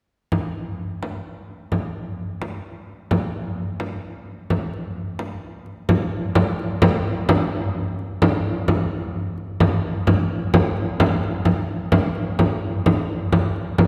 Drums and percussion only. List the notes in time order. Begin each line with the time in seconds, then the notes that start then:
0.32 frame drum
1.03 frame drum
1.72 frame drum
2.42 frame drum
3.11 frame drum
3.80 frame drum
4.50 frame drum
4.73 frame drum
5.19 frame drum
5.66 frame drum
5.89 frame drum
6.35 frame drum
6.59 frame drum
6.82 frame drum
7.29 frame drum
7.99 frame drum
8.22 frame drum
8.68 frame drum
9.38 frame drum
9.60 frame drum
10.07 frame drum
10.54 frame drum
10.77 frame drum
11.00 frame drum
11.23 frame drum
11.45 frame drum
11.92 frame drum
12.15 frame drum
12.39 frame drum
12.86 frame drum
13.32 frame drum
13.56 frame drum
13.78 frame drum